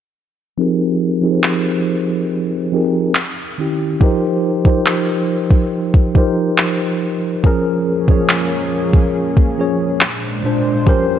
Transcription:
0.58 F3 C4 D#4 G4 G#4 A#4
1.21 F3 C4 D#4 G4 G#4 A#4
1.31 C5
1.44 clap
2.72 F3 C4 D#4 G4 G#4 A#4
3.15 clap
3.58 D#3 C#4 E4 G4
4.00 F3 D#4 G4 A#4 C5, kick
4.65 F3 D#4 G4 A#4 C5, kick
4.86 clap
5.51 kick
5.94 kick
6.15 F3 D#4 G4 A#4 C5, kick
6.58 clap
7.43 F3 A#3 C#4 G#4 A#4, kick
8.08 F3 C#4 G#4 C#5, kick
8.29 clap
8.93 kick
9.37 kick
9.58 F3 C#4 G#4 C#5
10.01 A#2 G#3 D4 C5, clap
10.43 A#2 G#3 D4 C5
10.86 F2 F3 G3 A#3 C#4 G4 A#4 C5, kick

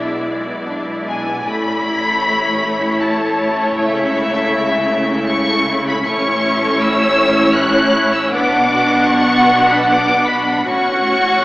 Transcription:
Already playing: B1 B2 G#3 D4 E4 D5 E5
0.11 B3
0.29 G#3
0.48 B3
0.67 D4
0.88 E4
1.07 D4 G#5
1.26 B3
1.46 A1 A2 A3 E4 B5
1.65 C#4
1.85 E4
2.03 A4
2.22 E4 C#5
2.41 C#4
2.60 A3
2.79 C#4
2.99 E4 A5
3.19 A4
3.38 E4
3.58 C#4
3.76 C#2 C#3 A3 E5
3.96 C#4
4.15 E4
4.32 A4
4.51 E4
4.70 C#4
4.89 A3
5.09 C#4
5.28 E4 C#6
5.47 A4
5.67 E4
5.86 C#4 B5
6.05 A1 A2 A3 C#4 E4 C#5 C#6
6.24 C#4
6.43 E4
6.61 A4
6.80 E4 E6
7.00 C#4
7.18 A3
7.36 C#4
7.56 E4 F#6
7.75 A4
7.94 E4
8.13 C#4 E6
8.33 B1 B2 B3 D4 F#5 D6
8.53 D4
8.72 F#4
8.92 D4
9.10 B3 C#6
9.29 D4
9.49 F#4
9.69 D4 B5
9.80 E6
9.86 B3 D6
10.08 D4
10.27 F#4 B5
10.47 D4
10.65 A1 A2 C#4 F#4 F#5 C#6

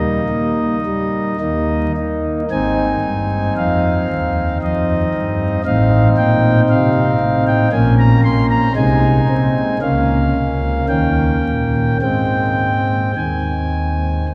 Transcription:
Already playing: G3 A#3 D#4 D#5
0.29 A#3
0.86 G3
1.41 D#2 D#3 A#3 D#4
1.97 D#4
2.51 G#1 G#2 C4 D#4 G#5
3.04 G2
3.57 F2 F5
4.10 D#2
4.62 F2 D#5
5.14 G2
5.65 A1 A2 C4 D#4 F5
6.17 A#2 G5
6.69 C3 F5
7.21 A2
7.47 G5
7.72 A#1 A#2 A#3 C#4 G#5
7.98 A#5
8.24 A#3 C6
8.50 A#5
8.76 C2 C3 G#3 D#4 G#5
9.29 C4
9.82 C#2 C#3 A#3 C#4 F5
10.35 C#2
10.89 D#2 D#3 A#3 C#4 G5
11.45 A#2
12.02 G#2 G#3 C4 G5
13.16 D#2 D#3 G#5
14.28 G#1 G#2

